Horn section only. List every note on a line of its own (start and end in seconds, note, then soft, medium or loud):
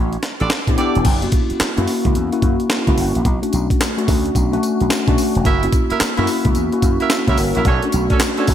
0.40 0.51 D4 medium
0.40 0.50 G4 medium
0.40 0.50 A4 medium
0.40 0.51 D5 medium
0.77 0.96 D4 medium
0.77 0.95 G4 medium
0.77 0.95 A4 medium
0.77 0.96 D5 medium
5.45 5.63 E4 medium
5.45 5.63 F#4 medium
5.45 5.63 A#4 medium
5.45 5.63 E5 loud
5.90 6.01 E4 medium
5.90 6.00 F#4 medium
5.90 6.00 A#4 medium
5.90 6.01 E5 medium
6.17 6.28 E4 medium
6.17 6.28 F#4 medium
6.17 6.28 A#4 medium
6.17 6.28 E5 medium
7.00 7.11 E4 medium
7.00 7.10 F#4 medium
7.00 7.11 A#4 medium
7.00 7.11 E5 medium
7.27 7.38 E4 medium
7.27 7.38 F#4 medium
7.27 7.38 A#4 medium
7.27 7.38 E5 medium
7.55 7.66 E4 medium
7.55 7.65 F#4 medium
7.55 7.66 A#4 medium
7.55 7.66 E5 medium
7.65 7.83 C#4 medium
7.65 7.83 D4 loud
7.65 7.83 A4 medium
7.65 7.83 C#5 loud
8.10 8.21 C#4 medium
8.10 8.20 D4 medium
8.10 8.21 A4 medium
8.10 8.21 C#5 medium
8.37 8.48 C#4 medium
8.37 8.48 D4 medium
8.37 8.48 A4 medium
8.37 8.48 C#5 medium